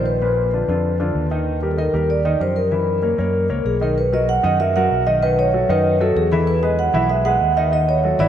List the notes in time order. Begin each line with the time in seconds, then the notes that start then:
Already playing: A#1 D#3 D#4 F4
0.06 B4
0.21 A#2 A#3 B4
0.53 D3 D4 F4
0.68 F2 D3 D4 F4
1.00 D3 D4 F4
1.15 D#2
1.31 D#3 D#4 D#5
1.62 G3 G4 A#4
1.71 A4
1.77 D#3 D#4 A#4 D#5
1.94 D#2 G3 G4 A#4
2.10 D5
2.25 D#3 D#4 D#5
2.40 F#2 F3 G4 A#4 C5
2.56 A#4
2.71 E3 E4 E5
3.02 A#3 A#4 C#5
3.18 F#2 A#3 A#4 C#5
3.49 C#2 A#3 A#4 C#5
3.65 B1 G#4
3.81 D#3 D#4 A#4 D#5
3.98 B4
4.13 F#3 F#4 A#4 D#5
4.29 F#5
4.43 F#2 D#3 D#4 D#5
4.60 F#3 F#4 A#4 E5
4.76 F#3 F#4 A#4 F#5
4.91 B1
5.06 D#3 D#4 D#5
5.22 D#3 D#4 B4 D#5
5.39 C#5
5.54 F#3 F#4 A4
5.69 F#2 D#3 D#4 B4 D#5
6.00 F#3 F#4 A4
6.16 E2 G#4
6.32 E3 E4 A4 E5
6.47 B4
6.62 G#3 G#4 B4 D#5
6.79 F#5
6.94 B1 E3 E4 E5
7.09 G#3 G#4 B4 E5
7.25 G#3 G#4 B4 F#5
7.40 D#2
7.57 D#3 D#4 D#5 E5
7.72 D#3 D#4 D#5
7.89 C#5
8.04 F#3 F#4 A4
8.19 G#1 E3 E4 D5 E5